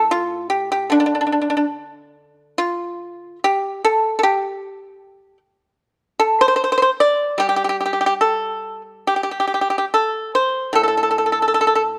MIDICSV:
0, 0, Header, 1, 2, 480
1, 0, Start_track
1, 0, Tempo, 805369
1, 544, Time_signature, 2, 2, 24, 8
1, 1031, Tempo, 848656
1, 1991, Tempo, 794702
1, 4391, Tempo, 815217
1, 4871, Tempo, 853485
1, 5831, Tempo, 797872
1, 7073, End_track
2, 0, Start_track
2, 0, Title_t, "Pipa"
2, 0, Program_c, 0, 105
2, 0, Note_on_c, 0, 45, 50
2, 66, Note_on_c, 0, 65, 73
2, 288, Note_off_c, 0, 65, 0
2, 297, Note_on_c, 0, 67, 64
2, 411, Note_off_c, 0, 67, 0
2, 427, Note_on_c, 0, 67, 61
2, 535, Note_on_c, 0, 50, 48
2, 536, Note_off_c, 0, 67, 0
2, 542, Note_off_c, 0, 45, 0
2, 547, Note_on_c, 0, 62, 59
2, 585, Note_off_c, 0, 62, 0
2, 595, Note_on_c, 0, 62, 42
2, 625, Note_off_c, 0, 62, 0
2, 632, Note_on_c, 0, 62, 43
2, 671, Note_off_c, 0, 62, 0
2, 684, Note_on_c, 0, 62, 32
2, 713, Note_off_c, 0, 62, 0
2, 720, Note_on_c, 0, 62, 39
2, 748, Note_off_c, 0, 62, 0
2, 755, Note_on_c, 0, 62, 31
2, 782, Note_off_c, 0, 62, 0
2, 789, Note_on_c, 0, 62, 37
2, 837, Note_off_c, 0, 62, 0
2, 844, Note_on_c, 0, 62, 31
2, 886, Note_off_c, 0, 62, 0
2, 893, Note_on_c, 0, 62, 39
2, 927, Note_off_c, 0, 62, 0
2, 934, Note_on_c, 0, 62, 36
2, 976, Note_off_c, 0, 62, 0
2, 1513, Note_on_c, 0, 65, 70
2, 1967, Note_off_c, 0, 65, 0
2, 1986, Note_off_c, 0, 50, 0
2, 2000, Note_on_c, 0, 67, 72
2, 2223, Note_off_c, 0, 67, 0
2, 2243, Note_on_c, 0, 69, 73
2, 2426, Note_off_c, 0, 69, 0
2, 2450, Note_on_c, 0, 69, 57
2, 2476, Note_off_c, 0, 69, 0
2, 2478, Note_on_c, 0, 67, 74
2, 3165, Note_off_c, 0, 67, 0
2, 3663, Note_on_c, 0, 69, 74
2, 3777, Note_off_c, 0, 69, 0
2, 3793, Note_on_c, 0, 72, 90
2, 3828, Note_off_c, 0, 72, 0
2, 3835, Note_on_c, 0, 72, 61
2, 3874, Note_off_c, 0, 72, 0
2, 3883, Note_on_c, 0, 72, 70
2, 3920, Note_off_c, 0, 72, 0
2, 3930, Note_on_c, 0, 72, 58
2, 3965, Note_off_c, 0, 72, 0
2, 3980, Note_on_c, 0, 72, 69
2, 4007, Note_off_c, 0, 72, 0
2, 4014, Note_on_c, 0, 72, 62
2, 4034, Note_off_c, 0, 72, 0
2, 4041, Note_on_c, 0, 72, 64
2, 4085, Note_off_c, 0, 72, 0
2, 4150, Note_on_c, 0, 74, 83
2, 4374, Note_off_c, 0, 74, 0
2, 4377, Note_on_c, 0, 55, 54
2, 4389, Note_on_c, 0, 67, 75
2, 4429, Note_off_c, 0, 67, 0
2, 4443, Note_on_c, 0, 67, 56
2, 4478, Note_off_c, 0, 67, 0
2, 4487, Note_on_c, 0, 67, 56
2, 4521, Note_off_c, 0, 67, 0
2, 4534, Note_on_c, 0, 67, 47
2, 4555, Note_off_c, 0, 67, 0
2, 4562, Note_on_c, 0, 67, 52
2, 4601, Note_off_c, 0, 67, 0
2, 4629, Note_on_c, 0, 67, 48
2, 4652, Note_off_c, 0, 67, 0
2, 4659, Note_on_c, 0, 67, 49
2, 4694, Note_off_c, 0, 67, 0
2, 4703, Note_on_c, 0, 67, 47
2, 4737, Note_off_c, 0, 67, 0
2, 4748, Note_on_c, 0, 67, 51
2, 4773, Note_off_c, 0, 67, 0
2, 4780, Note_on_c, 0, 67, 56
2, 4820, Note_off_c, 0, 67, 0
2, 4867, Note_on_c, 0, 69, 67
2, 5205, Note_off_c, 0, 69, 0
2, 5353, Note_on_c, 0, 67, 66
2, 5394, Note_off_c, 0, 67, 0
2, 5403, Note_on_c, 0, 67, 46
2, 5436, Note_off_c, 0, 67, 0
2, 5443, Note_on_c, 0, 67, 47
2, 5483, Note_off_c, 0, 67, 0
2, 5488, Note_on_c, 0, 67, 42
2, 5527, Note_off_c, 0, 67, 0
2, 5536, Note_on_c, 0, 67, 47
2, 5573, Note_off_c, 0, 67, 0
2, 5579, Note_on_c, 0, 67, 42
2, 5609, Note_off_c, 0, 67, 0
2, 5616, Note_on_c, 0, 67, 43
2, 5650, Note_off_c, 0, 67, 0
2, 5657, Note_on_c, 0, 67, 43
2, 5697, Note_off_c, 0, 67, 0
2, 5706, Note_on_c, 0, 67, 49
2, 5743, Note_off_c, 0, 67, 0
2, 5751, Note_on_c, 0, 67, 50
2, 5786, Note_off_c, 0, 67, 0
2, 5825, Note_off_c, 0, 55, 0
2, 5840, Note_on_c, 0, 69, 62
2, 6064, Note_off_c, 0, 69, 0
2, 6087, Note_on_c, 0, 72, 64
2, 6305, Note_off_c, 0, 72, 0
2, 6315, Note_on_c, 0, 45, 51
2, 6331, Note_on_c, 0, 69, 65
2, 6364, Note_off_c, 0, 69, 0
2, 6379, Note_on_c, 0, 69, 43
2, 6398, Note_off_c, 0, 69, 0
2, 6405, Note_on_c, 0, 69, 49
2, 6443, Note_off_c, 0, 69, 0
2, 6463, Note_on_c, 0, 69, 42
2, 6489, Note_off_c, 0, 69, 0
2, 6497, Note_on_c, 0, 69, 45
2, 6532, Note_off_c, 0, 69, 0
2, 6543, Note_on_c, 0, 69, 41
2, 6577, Note_off_c, 0, 69, 0
2, 6588, Note_on_c, 0, 69, 44
2, 6621, Note_off_c, 0, 69, 0
2, 6635, Note_on_c, 0, 69, 38
2, 6666, Note_off_c, 0, 69, 0
2, 6673, Note_on_c, 0, 69, 45
2, 6706, Note_off_c, 0, 69, 0
2, 6733, Note_on_c, 0, 69, 44
2, 6758, Note_off_c, 0, 69, 0
2, 6766, Note_on_c, 0, 69, 47
2, 6796, Note_off_c, 0, 69, 0
2, 6805, Note_on_c, 0, 69, 49
2, 6837, Note_off_c, 0, 69, 0
2, 6845, Note_on_c, 0, 69, 51
2, 6875, Note_off_c, 0, 69, 0
2, 6882, Note_on_c, 0, 69, 47
2, 6918, Note_off_c, 0, 69, 0
2, 6933, Note_on_c, 0, 69, 53
2, 6965, Note_off_c, 0, 69, 0
2, 7073, Note_off_c, 0, 45, 0
2, 7073, End_track
0, 0, End_of_file